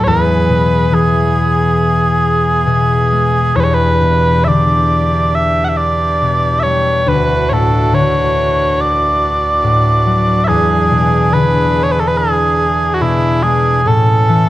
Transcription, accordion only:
0, 0, Header, 1, 2, 480
1, 0, Start_track
1, 0, Tempo, 855920
1, 30, Time_signature, 4, 2, 24, 8
1, 990, Tempo, 895522
1, 2910, Tempo, 865801
1, 3870, Tempo, 847458
1, 8068, End_track
2, 0, Start_track
2, 0, Title_t, "Accordion"
2, 0, Program_c, 0, 21
2, 0, Note_on_c, 0, 52, 65
2, 34, Note_on_c, 0, 68, 75
2, 35, Note_on_c, 0, 59, 60
2, 1936, Note_off_c, 0, 59, 0
2, 1936, Note_off_c, 0, 68, 0
2, 1955, Note_on_c, 0, 62, 60
2, 1960, Note_on_c, 0, 67, 70
2, 3854, Note_off_c, 0, 67, 0
2, 3880, Note_on_c, 0, 66, 73
2, 5785, Note_off_c, 0, 66, 0
2, 5804, Note_on_c, 0, 68, 76
2, 7682, Note_off_c, 0, 62, 0
2, 7684, Note_off_c, 0, 52, 0
2, 7686, Note_off_c, 0, 68, 0
2, 7705, Note_on_c, 0, 61, 64
2, 7710, Note_on_c, 0, 52, 69
2, 7712, Note_on_c, 0, 69, 74
2, 8068, Note_off_c, 0, 52, 0
2, 8068, Note_off_c, 0, 61, 0
2, 8068, Note_off_c, 0, 69, 0
2, 8068, End_track
0, 0, End_of_file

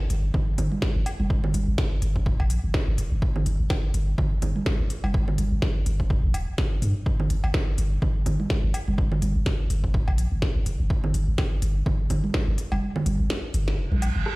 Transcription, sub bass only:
0, 0, Header, 1, 2, 480
1, 0, Start_track
1, 0, Key_signature, -2, "minor"
1, 0, Tempo, 480000
1, 1302, Time_signature, 4, 2, 24, 8
1, 14357, End_track
2, 0, Start_track
2, 0, Title_t, "Sub bass"
2, 0, Program_c, 0, 38
2, 101, Note_on_c, 0, 31, 99
2, 304, Note_off_c, 0, 31, 0
2, 581, Note_on_c, 0, 31, 84
2, 693, Note_off_c, 0, 31, 0
2, 958, Note_on_c, 0, 31, 104
2, 1043, Note_off_c, 0, 31, 0
2, 1197, Note_on_c, 0, 29, 91
2, 1283, Note_off_c, 0, 29, 0
2, 1541, Note_on_c, 0, 31, 100
2, 1653, Note_off_c, 0, 31, 0
2, 1678, Note_on_c, 0, 31, 80
2, 1763, Note_off_c, 0, 31, 0
2, 2021, Note_on_c, 0, 31, 102
2, 2261, Note_on_c, 0, 29, 98
2, 2276, Note_off_c, 0, 31, 0
2, 2373, Note_off_c, 0, 29, 0
2, 2397, Note_on_c, 0, 34, 102
2, 2589, Note_off_c, 0, 34, 0
2, 2637, Note_on_c, 0, 31, 82
2, 2723, Note_off_c, 0, 31, 0
2, 2878, Note_on_c, 0, 31, 101
2, 2963, Note_off_c, 0, 31, 0
2, 2981, Note_on_c, 0, 29, 96
2, 3093, Note_off_c, 0, 29, 0
2, 3117, Note_on_c, 0, 31, 86
2, 3203, Note_off_c, 0, 31, 0
2, 3461, Note_on_c, 0, 31, 103
2, 3573, Note_off_c, 0, 31, 0
2, 3596, Note_on_c, 0, 31, 80
2, 3682, Note_off_c, 0, 31, 0
2, 3941, Note_on_c, 0, 31, 100
2, 4144, Note_off_c, 0, 31, 0
2, 4420, Note_on_c, 0, 31, 83
2, 4533, Note_off_c, 0, 31, 0
2, 4796, Note_on_c, 0, 31, 105
2, 4882, Note_off_c, 0, 31, 0
2, 5037, Note_on_c, 0, 29, 90
2, 5122, Note_off_c, 0, 29, 0
2, 5381, Note_on_c, 0, 31, 99
2, 5493, Note_off_c, 0, 31, 0
2, 5517, Note_on_c, 0, 31, 78
2, 5603, Note_off_c, 0, 31, 0
2, 5861, Note_on_c, 0, 31, 101
2, 6102, Note_on_c, 0, 29, 98
2, 6117, Note_off_c, 0, 31, 0
2, 6214, Note_off_c, 0, 29, 0
2, 6236, Note_on_c, 0, 34, 104
2, 6334, Note_off_c, 0, 34, 0
2, 6340, Note_on_c, 0, 26, 82
2, 6453, Note_off_c, 0, 26, 0
2, 6820, Note_on_c, 0, 43, 99
2, 6932, Note_off_c, 0, 43, 0
2, 7300, Note_on_c, 0, 31, 96
2, 7412, Note_off_c, 0, 31, 0
2, 7436, Note_on_c, 0, 31, 78
2, 7522, Note_off_c, 0, 31, 0
2, 7780, Note_on_c, 0, 31, 102
2, 7984, Note_off_c, 0, 31, 0
2, 8261, Note_on_c, 0, 31, 83
2, 8373, Note_off_c, 0, 31, 0
2, 8637, Note_on_c, 0, 31, 98
2, 8723, Note_off_c, 0, 31, 0
2, 8878, Note_on_c, 0, 29, 90
2, 8963, Note_off_c, 0, 29, 0
2, 9221, Note_on_c, 0, 31, 99
2, 9333, Note_off_c, 0, 31, 0
2, 9358, Note_on_c, 0, 31, 81
2, 9443, Note_off_c, 0, 31, 0
2, 9702, Note_on_c, 0, 31, 101
2, 9941, Note_on_c, 0, 29, 97
2, 9956, Note_off_c, 0, 31, 0
2, 10053, Note_off_c, 0, 29, 0
2, 10078, Note_on_c, 0, 34, 103
2, 10269, Note_off_c, 0, 34, 0
2, 10318, Note_on_c, 0, 31, 86
2, 10403, Note_off_c, 0, 31, 0
2, 10556, Note_on_c, 0, 31, 100
2, 10642, Note_off_c, 0, 31, 0
2, 10662, Note_on_c, 0, 29, 99
2, 10774, Note_off_c, 0, 29, 0
2, 10798, Note_on_c, 0, 31, 85
2, 10883, Note_off_c, 0, 31, 0
2, 11142, Note_on_c, 0, 31, 98
2, 11254, Note_off_c, 0, 31, 0
2, 11277, Note_on_c, 0, 31, 80
2, 11363, Note_off_c, 0, 31, 0
2, 11622, Note_on_c, 0, 31, 102
2, 11824, Note_off_c, 0, 31, 0
2, 12102, Note_on_c, 0, 31, 85
2, 12214, Note_off_c, 0, 31, 0
2, 12478, Note_on_c, 0, 31, 103
2, 12563, Note_off_c, 0, 31, 0
2, 12718, Note_on_c, 0, 29, 90
2, 12803, Note_off_c, 0, 29, 0
2, 13061, Note_on_c, 0, 31, 100
2, 13173, Note_off_c, 0, 31, 0
2, 13198, Note_on_c, 0, 31, 78
2, 13283, Note_off_c, 0, 31, 0
2, 13541, Note_on_c, 0, 31, 104
2, 13781, Note_on_c, 0, 29, 98
2, 13796, Note_off_c, 0, 31, 0
2, 13893, Note_off_c, 0, 29, 0
2, 13916, Note_on_c, 0, 34, 102
2, 14108, Note_off_c, 0, 34, 0
2, 14157, Note_on_c, 0, 31, 84
2, 14243, Note_off_c, 0, 31, 0
2, 14357, End_track
0, 0, End_of_file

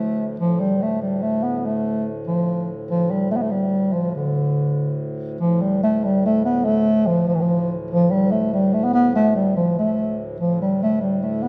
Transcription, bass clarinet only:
0, 0, Header, 1, 2, 480
1, 0, Start_track
1, 0, Tempo, 416089
1, 445, Time_signature, 6, 3, 24, 8
1, 13247, End_track
2, 0, Start_track
2, 0, Title_t, "Bass clarinet"
2, 0, Program_c, 0, 71
2, 0, Note_on_c, 0, 57, 89
2, 268, Note_off_c, 0, 57, 0
2, 458, Note_on_c, 0, 53, 83
2, 694, Note_on_c, 0, 55, 79
2, 711, Note_off_c, 0, 53, 0
2, 951, Note_on_c, 0, 57, 87
2, 968, Note_off_c, 0, 55, 0
2, 1165, Note_off_c, 0, 57, 0
2, 1172, Note_on_c, 0, 55, 73
2, 1411, Note_on_c, 0, 57, 81
2, 1428, Note_off_c, 0, 55, 0
2, 1657, Note_on_c, 0, 59, 75
2, 1675, Note_off_c, 0, 57, 0
2, 1816, Note_off_c, 0, 59, 0
2, 1816, Note_on_c, 0, 59, 58
2, 1907, Note_on_c, 0, 57, 87
2, 1924, Note_off_c, 0, 59, 0
2, 2383, Note_off_c, 0, 57, 0
2, 2623, Note_on_c, 0, 53, 75
2, 3126, Note_off_c, 0, 53, 0
2, 3352, Note_on_c, 0, 53, 88
2, 3592, Note_on_c, 0, 55, 77
2, 3609, Note_off_c, 0, 53, 0
2, 3817, Note_off_c, 0, 55, 0
2, 3824, Note_on_c, 0, 57, 79
2, 3883, Note_on_c, 0, 59, 73
2, 3900, Note_off_c, 0, 57, 0
2, 3947, Note_on_c, 0, 57, 72
2, 3964, Note_off_c, 0, 59, 0
2, 4049, Note_on_c, 0, 55, 78
2, 4066, Note_off_c, 0, 57, 0
2, 4531, Note_on_c, 0, 53, 78
2, 4548, Note_off_c, 0, 55, 0
2, 4779, Note_off_c, 0, 53, 0
2, 4792, Note_on_c, 0, 50, 75
2, 5705, Note_off_c, 0, 50, 0
2, 6240, Note_on_c, 0, 53, 93
2, 6478, Note_on_c, 0, 55, 81
2, 6496, Note_off_c, 0, 53, 0
2, 6714, Note_off_c, 0, 55, 0
2, 6730, Note_on_c, 0, 57, 96
2, 6971, Note_on_c, 0, 55, 86
2, 6988, Note_off_c, 0, 57, 0
2, 7201, Note_off_c, 0, 55, 0
2, 7219, Note_on_c, 0, 57, 96
2, 7429, Note_off_c, 0, 57, 0
2, 7446, Note_on_c, 0, 59, 95
2, 7672, Note_on_c, 0, 57, 110
2, 7689, Note_off_c, 0, 59, 0
2, 8153, Note_on_c, 0, 53, 95
2, 8170, Note_off_c, 0, 57, 0
2, 8384, Note_off_c, 0, 53, 0
2, 8391, Note_on_c, 0, 53, 91
2, 8471, Note_on_c, 0, 52, 77
2, 8488, Note_off_c, 0, 53, 0
2, 8550, Note_on_c, 0, 53, 85
2, 8567, Note_off_c, 0, 52, 0
2, 8929, Note_off_c, 0, 53, 0
2, 9125, Note_on_c, 0, 53, 102
2, 9361, Note_on_c, 0, 55, 87
2, 9378, Note_off_c, 0, 53, 0
2, 9594, Note_on_c, 0, 57, 98
2, 9611, Note_off_c, 0, 55, 0
2, 9829, Note_off_c, 0, 57, 0
2, 9846, Note_on_c, 0, 55, 89
2, 10077, Note_on_c, 0, 57, 82
2, 10094, Note_off_c, 0, 55, 0
2, 10197, Note_on_c, 0, 59, 94
2, 10214, Note_off_c, 0, 57, 0
2, 10302, Note_off_c, 0, 59, 0
2, 10309, Note_on_c, 0, 59, 98
2, 10529, Note_off_c, 0, 59, 0
2, 10565, Note_on_c, 0, 57, 95
2, 10777, Note_off_c, 0, 57, 0
2, 10796, Note_on_c, 0, 55, 80
2, 11011, Note_off_c, 0, 55, 0
2, 11034, Note_on_c, 0, 53, 78
2, 11249, Note_off_c, 0, 53, 0
2, 11293, Note_on_c, 0, 57, 78
2, 11777, Note_off_c, 0, 57, 0
2, 12004, Note_on_c, 0, 53, 89
2, 12212, Note_off_c, 0, 53, 0
2, 12249, Note_on_c, 0, 55, 73
2, 12454, Note_off_c, 0, 55, 0
2, 12489, Note_on_c, 0, 57, 90
2, 12693, Note_off_c, 0, 57, 0
2, 12709, Note_on_c, 0, 55, 76
2, 12921, Note_off_c, 0, 55, 0
2, 12952, Note_on_c, 0, 57, 79
2, 13186, Note_on_c, 0, 59, 87
2, 13203, Note_off_c, 0, 57, 0
2, 13247, Note_off_c, 0, 59, 0
2, 13247, End_track
0, 0, End_of_file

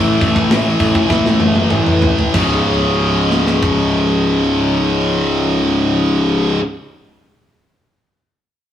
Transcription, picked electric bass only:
0, 0, Header, 1, 2, 480
1, 0, Start_track
1, 0, Key_signature, 4, "minor"
1, 0, Tempo, 588235
1, 892, Tempo, 621762
1, 1852, Tempo, 643777
1, 1853, Time_signature, 4, 2, 24, 8
1, 6614, End_track
2, 0, Start_track
2, 0, Title_t, "Picked electric bass"
2, 0, Program_c, 0, 34
2, 0, Note_on_c, 0, 33, 80
2, 135, Note_off_c, 0, 33, 0
2, 174, Note_on_c, 0, 33, 92
2, 375, Note_off_c, 0, 33, 0
2, 403, Note_on_c, 0, 33, 92
2, 611, Note_off_c, 0, 33, 0
2, 652, Note_on_c, 0, 33, 81
2, 859, Note_off_c, 0, 33, 0
2, 896, Note_on_c, 0, 33, 81
2, 1095, Note_off_c, 0, 33, 0
2, 1126, Note_on_c, 0, 30, 89
2, 1330, Note_off_c, 0, 30, 0
2, 1359, Note_on_c, 0, 33, 81
2, 1778, Note_off_c, 0, 33, 0
2, 1855, Note_on_c, 0, 25, 83
2, 4989, Note_off_c, 0, 25, 0
2, 6614, End_track
0, 0, End_of_file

